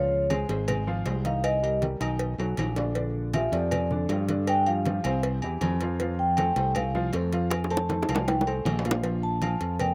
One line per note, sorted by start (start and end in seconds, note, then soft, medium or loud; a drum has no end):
0.00 0.43 C#2 medium
0.00 0.23 F3 medium
0.00 0.24 F4 medium
0.00 0.28 C#5 medium
0.00 0.24 F5 medium
0.12 high conga soft
0.30 0.46 G#3 medium
0.30 0.46 G#4 medium
0.30 0.46 C5 medium
0.30 cowbell medium
0.30 high conga loud
0.30 low timbale medium
0.30 low agogo loud
0.49 1.02 G#1 medium
0.49 0.81 G#3 medium
0.49 0.81 G#4 medium
0.49 0.81 C5 medium
0.49 cowbell medium
0.68 cowbell loud
0.68 high conga soft
0.68 low conga medium
0.68 low agogo loud
0.87 1.03 F3 loud
0.87 1.03 F4 loud
0.87 1.03 F5 medium
0.87 high conga soft
1.05 1.95 C2 medium
1.05 1.21 G#3 medium
1.05 1.22 G#4 medium
1.05 1.22 C5 medium
1.05 cowbell medium
1.05 low timbale medium
1.05 low agogo medium
1.24 1.56 D#3 medium
1.24 1.56 D#4 medium
1.24 1.56 D#5 medium
1.24 1.44 F5 loud
1.24 cowbell medium
1.24 high conga medium
1.44 1.80 D#5 medium
1.44 cowbell loud
1.44 high conga soft
1.44 low agogo loud
1.62 1.78 G3 medium
1.62 1.79 G4 medium
1.62 1.79 A#4 medium
1.62 high conga soft
1.62 low agogo medium
1.81 1.97 G3 medium
1.81 1.97 G4 medium
1.81 1.98 A#4 medium
1.81 cowbell medium
1.81 high conga loud
1.81 low timbale medium
2.00 2.36 B1 medium
2.00 2.32 D#3 medium
2.00 2.32 D#4 medium
2.00 2.32 D#5 medium
2.00 cowbell medium
2.00 high conga soft
2.00 low agogo loud
2.19 cowbell loud
2.19 high conga soft
2.38 2.56 B1 medium
2.38 2.70 F#3 medium
2.38 2.70 F#4 medium
2.38 2.70 A4 medium
2.38 high conga soft
2.38 high timbale medium
2.38 low agogo medium
2.57 3.47 A#1 medium
2.57 cowbell medium
2.57 high conga medium
2.57 high timbale medium
2.57 low agogo loud
2.76 2.92 D3 medium
2.76 2.92 D4 medium
2.76 2.92 D5 medium
2.76 cowbell medium
2.76 low timbale medium
2.95 3.27 D3 medium
2.95 3.27 D4 medium
2.95 3.28 D5 medium
2.95 cowbell loud
2.95 high conga soft
3.15 high conga soft
3.34 3.50 F3 medium
3.34 3.50 F4 medium
3.34 3.50 G4 medium
3.34 3.53 E5 medium
3.34 cowbell medium
3.34 high conga loud
3.34 low timbale medium
3.34 low agogo loud
3.52 4.06 F2 medium
3.52 3.84 F3 medium
3.52 3.85 F4 medium
3.52 3.85 G4 medium
3.52 4.06 D5 medium
3.52 cowbell medium
3.71 cowbell loud
3.71 high conga soft
3.71 low conga medium
3.71 low agogo loud
3.91 4.07 D3 medium
3.91 4.07 D4 medium
3.91 4.07 D5 medium
3.91 high conga soft
3.91 low conga medium
4.09 4.99 G2 loud
4.09 4.26 F3 medium
4.09 4.26 F4 medium
4.09 4.26 G4 medium
4.09 cowbell medium
4.09 high conga soft
4.09 low timbale medium
4.09 low agogo medium
4.29 4.60 D3 medium
4.29 4.60 D4 medium
4.29 4.61 D5 medium
4.29 cowbell medium
4.29 high conga medium
4.47 4.67 G5 loud
4.47 cowbell loud
4.47 high conga soft
4.47 low agogo loud
4.66 4.83 F3 medium
4.66 4.83 F4 medium
4.66 4.83 G4 medium
4.66 5.20 F5 medium
4.66 high conga soft
4.66 low agogo medium
4.85 5.02 F3 medium
4.85 5.02 F4 medium
4.85 5.02 G4 medium
4.85 cowbell medium
4.85 high conga loud
4.85 low timbale medium
5.04 5.40 C2 loud
5.04 5.36 C3 loud
5.04 5.37 C4 loud
5.04 5.37 C5 medium
5.04 cowbell medium
5.04 high conga soft
5.04 low agogo loud
5.23 cowbell loud
5.23 high conga soft
5.42 5.60 E2 medium
5.42 5.74 E3 medium
5.42 5.75 E4 medium
5.42 5.75 G4 medium
5.42 high conga soft
5.42 low agogo loud
5.61 6.51 F2 loud
5.61 cowbell medium
5.61 high conga medium
5.61 low timbale medium
5.61 low agogo loud
5.81 5.97 F3 medium
5.81 5.97 F4 medium
5.81 5.98 F5 medium
5.81 cowbell medium
6.00 6.32 F3 medium
6.00 6.32 F4 medium
6.00 6.32 F5 medium
6.00 cowbell loud
6.00 high conga soft
6.19 6.72 G5 medium
6.19 high conga soft
6.37 6.54 A3 medium
6.37 6.54 A4 medium
6.37 6.54 C5 medium
6.37 cowbell medium
6.37 high conga loud
6.37 low timbale medium
6.37 low agogo loud
6.56 7.09 C2 medium
6.56 6.88 A3 medium
6.56 6.88 A4 medium
6.56 6.88 C5 medium
6.56 cowbell medium
6.75 6.95 F5 medium
6.75 cowbell loud
6.75 high conga soft
6.75 low conga medium
6.75 low agogo loud
6.95 7.10 F3 loud
6.95 7.10 F4 loud
6.95 7.11 F5 medium
6.95 high conga soft
6.95 low conga medium
7.13 8.03 F2 loud
7.13 7.30 A3 medium
7.13 7.29 A4 medium
7.13 7.30 C5 medium
7.13 cowbell medium
7.13 high conga soft
7.13 low timbale medium
7.13 low agogo medium
7.33 7.64 F3 medium
7.33 7.64 F4 medium
7.33 7.64 F5 medium
7.33 cowbell medium
7.51 cowbell medium
7.51 high bongo loud
7.51 high conga soft
7.51 low agogo loud
7.64 high bongo medium
7.70 7.86 A3 medium
7.70 7.86 A4 medium
7.70 7.87 C5 medium
7.70 8.24 A5 loud
7.70 high conga soft
7.70 low agogo medium
7.77 low bongo loud
7.89 8.06 A3 medium
7.89 8.06 A4 medium
7.89 8.06 C5 medium
7.89 cowbell medium
7.89 low bongo medium
7.89 high conga loud
7.89 high timbale medium
8.02 high bongo medium
8.02 high timbale medium
8.09 8.62 C2 medium
8.09 8.40 F3 medium
8.09 8.40 F4 loud
8.09 8.40 F5 loud
8.09 cowbell medium
8.09 high conga soft
8.09 low agogo loud
8.15 low bongo loud
8.15 low timbale loud
8.28 8.46 G5 medium
8.28 cowbell loud
8.28 low bongo loud
8.28 high conga soft
8.28 high timbale loud
8.41 low bongo loud
8.41 low timbale medium
8.47 8.78 A3 medium
8.47 8.78 A4 medium
8.47 8.78 C5 medium
8.47 high conga soft
8.47 low agogo medium
8.65 9.55 A#1 loud
8.65 cowbell medium
8.65 low bongo medium
8.65 high conga medium
8.65 low timbale medium
8.65 low agogo loud
8.79 low timbale loud
8.85 9.01 F3 medium
8.85 9.01 F4 medium
8.85 9.01 F5 medium
8.85 cowbell medium
8.91 low bongo loud
8.91 low timbale medium
9.03 9.35 F3 medium
9.03 9.35 F4 medium
9.03 9.35 F5 medium
9.03 cowbell loud
9.03 high conga soft
9.23 9.76 A5 loud
9.23 high conga soft
9.42 9.73 F3 medium
9.42 9.73 F4 medium
9.42 9.73 F5 medium
9.42 cowbell medium
9.42 high conga loud
9.42 low timbale medium
9.42 low agogo loud
9.61 9.94 F2 medium
9.61 cowbell medium
9.79 9.94 A#3 medium
9.79 9.94 A#4 medium
9.79 9.94 D5 medium
9.79 9.94 G5 medium
9.79 cowbell loud
9.79 high conga soft
9.79 low conga medium
9.79 low agogo loud